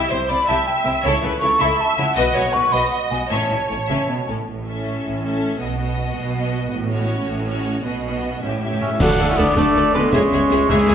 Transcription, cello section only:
0.11 C3
0.29 C3
0.48 C3
0.85 C3
1.04 C#3
1.23 C#3
1.42 C#3
1.61 C#3
1.98 C#3
2.16 B2
2.35 B2
2.54 B2
2.73 B2
3.11 B2
3.30 A2
3.49 A2
3.68 A2
3.89 C#3
4.08 B2
4.27 A2
4.48 A2
5.04 A2
5.60 B2
6.15 B2
6.71 A2
7.26 A2
7.84 B2
8.43 A2
9.01 D2
9.20 D2
9.39 D2
9.57 D2
9.76 D2
9.95 D2
10.14 C#2
10.32 C#2
10.51 C#2
10.70 C#2
10.88 C#2

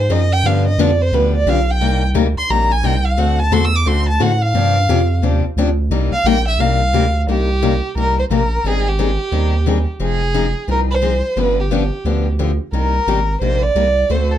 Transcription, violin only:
0.00 C5
0.12 D#5
0.33 G5
0.47 F5
0.68 D#5
0.81 D5
1.02 C5
1.14 B4
1.35 D5
1.49 F5
1.71 G5
2.38 C6
2.50 A#5
2.72 G#5
2.86 G5
3.05 F5
3.19 F#5
3.40 A5
3.53 C6
3.65 E6
3.76 D6
3.88 C6
4.09 A5
4.22 F#5
4.42 F5
6.13 F5
6.27 G5
6.48 E5
6.61 F5
7.30 G4
7.98 A#4
8.19 C5
8.32 A#4
8.68 G#4
8.89 G4
10.03 G#4
10.71 A#4
10.91 C5
11.40 B4
11.60 G4
12.75 A#4
13.42 C5
13.63 D5
14.11 C5
14.32 A4

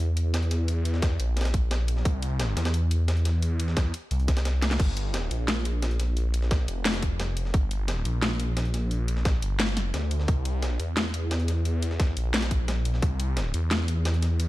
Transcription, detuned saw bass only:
Already playing: E2
1.20 A#1
2.05 C2
2.57 E2
4.11 C2
4.80 G1
5.31 A#1
6.68 F1
7.54 G1
8.05 A#1
9.42 G1
9.94 D2
10.28 C2
10.80 E2
12.17 A#1
13.02 C2
13.54 E2

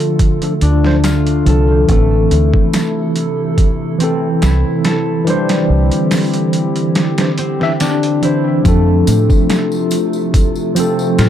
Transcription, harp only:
Already playing: A3 C4 F4 A4
0.62 D4
1.04 F4
1.47 A4
1.89 A3
4.00 C4
4.42 E4
4.84 A4
5.27 G3
7.38 C4
7.81 D4
8.23 E4
8.65 A3
10.76 C4
11.18 F4

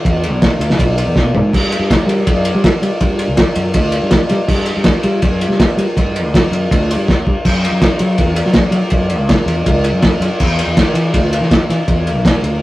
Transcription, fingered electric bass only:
0.05 E2
0.32 B1
0.59 D2
0.80 B1
1.06 E2
1.15 B2
1.35 G#2
1.53 G2
1.79 G2
2.06 G3
2.27 F#2
2.55 G3
2.82 G3
3.00 G2
3.28 D2
3.56 F#2
3.74 D2
4.02 G2
4.31 G3
4.48 G2
4.76 G2
5.04 G3
5.23 F#2
5.48 G3
5.77 G3
5.97 G2
6.24 D2
6.51 F#2
6.71 D2
6.96 G2
7.27 G2
7.46 F#2
7.71 F#2
8.00 F#3
8.18 E2
8.46 F#3
8.71 F#3
8.92 F#2
9.17 C#2
9.46 E2
9.66 C#2
9.92 F#2
10.20 F#2
10.40 E2
10.66 E2
10.94 E3
11.14 D2
11.40 E3
11.69 E3
11.88 E2
12.15 B1
12.42 D2

